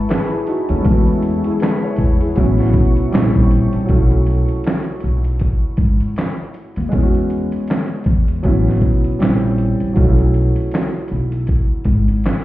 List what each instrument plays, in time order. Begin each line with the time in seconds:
Already playing: felt piano F#3 E4, ambient pad E4 B4 A5 C#6
0.09 felt piano G#4 B4, snare, clap, closed hi-hat, shaker
0.31 felt piano E4 G#4
0.47 felt piano D#4 F#4, closed hi-hat, shaker
0.69 upright bass D#2, felt piano A3 C#4, closed hi-hat
0.82 felt piano G#3 B3, ambient pad G#4 F#5, kick, closed hi-hat, shaker
0.86 upright bass E2, felt piano C#4 F#4
1.07 closed hi-hat
1.22 closed hi-hat, shaker
1.44 felt piano E4 G#4, closed hi-hat
1.60 felt piano G#4 B4, snare, clap, closed hi-hat, shaker
1.80 felt piano C#5, closed hi-hat
1.96 upright bass E2, kick, closed hi-hat, shaker
2.21 felt piano E4 G#4, closed hi-hat, shaker
2.36 upright bass A1, felt piano F#3 B3 C#4, ambient pad F#4 B4 A5 C#6, kick, closed hi-hat, shaker
2.40 felt piano E4
2.58 snare, closed hi-hat
2.73 upright bass B1, kick, closed hi-hat, shaker
2.97 closed hi-hat
3.12 upright bass A#1, felt piano G3 C4 C#4 D#4, ambient pad E4 A#4 G5 C#6, snare, clap, closed hi-hat, shaker
3.22 felt piano E4
3.35 kick, closed hi-hat
3.51 closed hi-hat, shaker
3.73 upright bass A#1, closed hi-hat
3.85 felt piano F#3 A3, closed hi-hat
3.89 upright bass B1, felt piano C#4 E4, kick
4.11 closed hi-hat
4.26 closed hi-hat
4.48 closed hi-hat
4.64 snare, clap, closed hi-hat
4.84 closed hi-hat
5.00 upright bass B1, closed hi-hat
5.24 closed hi-hat
5.39 kick, closed hi-hat
5.77 upright bass G#1, kick, closed hi-hat
6.00 closed hi-hat
6.16 snare, clap, closed hi-hat
6.54 closed hi-hat
6.76 upright bass D#2, closed hi-hat
6.89 felt piano G#3 B3, closed hi-hat
6.93 upright bass E2, felt piano C#4 E4, kick
7.03 felt piano F#4
7.14 closed hi-hat
7.30 closed hi-hat
7.52 closed hi-hat
7.68 snare, clap, closed hi-hat
7.88 closed hi-hat
8.04 upright bass E2, kick, closed hi-hat
8.28 closed hi-hat
8.43 upright bass A1, felt piano F#3 B3 C#4 E4, kick, closed hi-hat
8.68 snare
8.81 upright bass B1, kick, closed hi-hat
9.04 closed hi-hat
9.19 upright bass A#1, felt piano G3 C4 C#4, snare, clap, closed hi-hat
9.23 felt piano E4
9.58 closed hi-hat
9.80 upright bass A#1, closed hi-hat
9.93 felt piano F#3 A3, kick, closed hi-hat
9.97 upright bass B1, felt piano C#4 D#4
10.08 felt piano E4
10.19 closed hi-hat
10.34 closed hi-hat
10.56 closed hi-hat
10.71 snare, clap, closed hi-hat
10.92 closed hi-hat
11.08 upright bass B1, closed hi-hat
11.32 closed hi-hat
11.47 kick, closed hi-hat
11.84 upright bass G#1, kick, closed hi-hat
12.08 closed hi-hat
12.24 snare, clap, closed hi-hat